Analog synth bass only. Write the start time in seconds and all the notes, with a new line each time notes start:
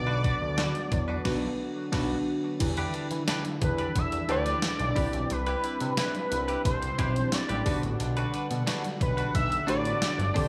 Already playing: B1
0.42 D2
0.92 E2
1.26 B1
1.93 B1
2.61 E2
3.11 E3
3.62 E2
3.95 E2
4.29 D2
4.80 B1
4.96 C2
5.14 B1
5.31 C2
5.81 C3
6.31 C2
6.65 C2
6.99 B1
7.50 A1
7.66 B1
7.83 A1
8.00 B1
8.51 B2
9.01 B1
9.35 B1
9.68 A1
10.18 G1
10.36 D2